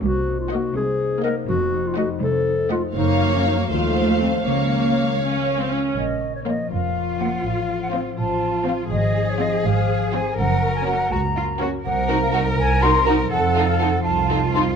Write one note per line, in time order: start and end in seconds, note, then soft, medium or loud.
0.00 0.48 C2 medium
0.00 0.61 C2 medium
0.00 1.51 C3 soft
0.00 0.50 A#3 soft
0.00 0.37 F#4 medium
0.27 0.98 D#4 soft
0.40 0.54 F4 medium
0.51 0.69 A#3 soft
0.51 1.23 A#3 soft
0.51 0.76 F#4 medium
0.51 0.69 D#5 soft
0.51 0.69 F#5 soft
0.76 1.34 C2 medium
0.76 1.24 G#4 medium
0.76 2.21 C5 soft
1.00 1.72 D#4 soft
1.24 1.42 A#3 medium
1.24 1.51 A#3 soft
1.24 1.35 A#4 medium
1.24 1.43 D#5 medium
1.24 1.43 F#5 soft
1.48 1.94 F1 medium
1.48 2.98 F2 medium
1.48 2.07 F2 medium
1.48 1.88 F#4 medium
1.73 2.46 D#4 soft
1.87 1.98 F4 medium
1.97 2.16 A3 medium
1.97 2.70 A3 soft
1.97 2.09 F#4 medium
1.97 2.16 D#5 medium
1.97 2.15 F#5 medium
2.22 2.81 C2 medium
2.22 2.71 A4 medium
2.22 2.98 C5 soft
2.47 2.98 D#4 soft
2.71 2.89 A3 medium
2.71 2.98 A3 soft
2.71 2.83 F4 medium
2.71 2.90 D#5 medium
2.71 2.90 F#5 soft
2.95 3.42 F#1 medium
2.95 3.72 F#2 medium
2.95 3.66 F#2 soft
2.95 3.66 A#3 soft
2.95 3.33 D#4 medium
2.95 3.66 C#5 medium
2.95 3.66 F5 medium
3.21 6.44 F3 soft
3.34 3.45 C#4 medium
3.45 3.72 C#4 soft
3.45 3.57 D#4 medium
3.45 3.73 A#4 soft
3.70 4.17 D#2 soft
3.70 4.44 D#2 soft
3.70 4.48 D#3 soft
3.70 4.46 A3 soft
3.70 4.20 F4 medium
3.70 4.46 C5 soft
3.70 4.44 F5 soft
3.96 4.19 C4 soft
4.21 4.48 C4 soft
4.21 4.33 C4 medium
4.21 4.48 A4 soft
4.45 4.92 C#2 soft
4.45 5.73 C#2 soft
4.45 5.98 C#3 soft
4.45 5.15 A#3 soft
4.45 5.20 C#4 soft
4.45 5.73 C#5 soft
4.45 5.73 F5 soft
4.71 5.44 A#4 soft
4.97 5.70 C#4 soft
5.21 5.56 C#4 soft
5.21 9.11 F4 soft
5.45 6.69 A#4 soft
5.59 5.71 C4 soft
5.71 5.96 C#4 soft
5.71 6.19 C#4 soft
5.71 5.77 F5 soft
5.96 6.55 A#1 soft
5.96 7.46 A#2 soft
5.96 6.33 D#5 medium
6.21 6.93 C#4 soft
6.35 6.40 C#5 soft
6.45 7.18 F3 soft
6.45 6.64 A#3 soft
6.45 6.64 F4 soft
6.45 6.64 C#5 soft
6.45 6.71 D#5 soft
6.70 7.29 F1 soft
6.70 8.14 F4 soft
6.70 7.46 A#4 soft
6.70 7.22 F5 medium
6.94 7.46 C#4 soft
7.19 7.91 F3 soft
7.19 7.38 A#3 soft
7.19 7.38 F4 soft
7.19 7.38 C#5 soft
7.19 7.47 F#5 medium
7.43 8.03 A1 soft
7.43 8.93 A2 soft
7.43 7.81 F5 medium
7.68 8.40 C4 soft
7.82 7.87 F#5 medium
7.92 8.65 F3 soft
7.92 8.11 C4 soft
7.92 8.11 F4 soft
7.92 8.11 C5 soft
7.92 7.99 F5 medium
8.17 8.76 A1 soft
8.17 8.90 F4 soft
8.17 9.63 C5 soft
8.17 8.66 A5 medium
8.41 9.14 C4 soft
8.66 9.39 F3 soft
8.66 8.85 C4 soft
8.66 8.85 F4 soft
8.66 8.85 C5 soft
8.66 8.73 F5 medium
8.91 9.50 G#1 medium
8.91 10.40 G#2 soft
8.91 10.36 G#4 medium
8.91 9.31 D#5 medium
9.16 9.88 C4 soft
9.29 9.42 C#5 medium
9.40 10.13 F3 soft
9.40 9.59 C4 soft
9.40 9.58 F4 soft
9.40 9.59 C5 soft
9.40 9.67 D#5 medium
9.65 10.23 G#1 medium
9.65 10.40 C5 soft
9.65 10.13 F5 medium
9.89 10.40 C4 soft
10.13 10.40 F3 soft
10.13 10.32 C4 medium
10.13 10.32 F4 soft
10.13 10.32 C5 soft
10.13 10.37 G#5 medium
10.38 10.97 F#1 medium
10.38 11.87 F#2 soft
10.38 11.10 A#4 medium
10.38 10.74 F#5 medium
10.63 11.35 C#4 soft
10.75 10.86 G#5 medium
10.86 11.59 A#3 soft
10.86 11.06 C#4 medium
10.86 11.05 F#4 medium
10.86 11.05 A#4 medium
10.86 11.13 F#5 medium
11.12 11.70 C#2 medium
11.12 11.20 F#4 medium
11.12 12.57 A#4 soft
11.12 11.61 A#5 medium
11.37 11.87 C#4 soft
11.37 11.45 F4 medium
11.60 13.34 A#3 soft
11.60 11.79 C#4 medium
11.60 11.78 F#4 medium
11.60 11.70 F#4 medium
11.60 11.79 A#4 medium
11.85 12.46 C2 medium
11.85 13.34 C3 medium
11.85 13.29 A#4 medium
11.85 12.19 F#5 medium
12.08 12.17 D#4 soft
12.08 12.81 D#4 soft
12.08 12.16 F#4 soft
12.08 12.16 A#4 soft
12.22 12.33 F5 medium
12.32 13.06 C4 soft
12.32 12.41 D#4 soft
12.32 12.40 F#4 soft
12.32 12.40 A#4 soft
12.32 12.39 F#5 medium
12.58 13.20 C2 medium
12.58 13.34 A#4 soft
12.58 12.83 G#5 medium
12.81 13.55 D#4 soft
12.81 12.92 D#4 medium
12.81 12.90 F#4 soft
12.81 12.89 A#4 soft
12.81 13.05 C6 medium
13.06 13.79 C4 soft
13.06 13.16 D#4 medium
13.06 13.14 F#4 soft
13.06 13.14 A#4 soft
13.06 13.12 A#5 medium
13.30 13.93 F2 medium
13.30 14.76 F2 medium
13.30 14.04 A4 medium
13.30 13.67 F#5 medium
13.55 14.28 D#4 soft
13.55 13.65 D#4 soft
13.55 13.63 F4 soft
13.55 13.65 A4 soft
13.68 13.81 F5 medium
13.80 14.53 C4 soft
13.80 13.90 D#4 soft
13.80 13.88 F4 soft
13.80 13.89 A4 soft
13.80 14.02 F#5 medium
14.03 14.67 C2 medium
14.03 14.76 F4 medium
14.03 14.76 A4 soft
14.03 14.52 A5 medium
14.29 14.76 D#4 soft
14.29 14.39 D#4 soft
14.29 14.38 F4 soft
14.29 14.38 A4 soft
14.54 14.76 C4 soft
14.54 14.64 D#4 soft
14.54 14.63 F4 soft
14.54 14.62 A4 soft
14.54 14.60 C6 medium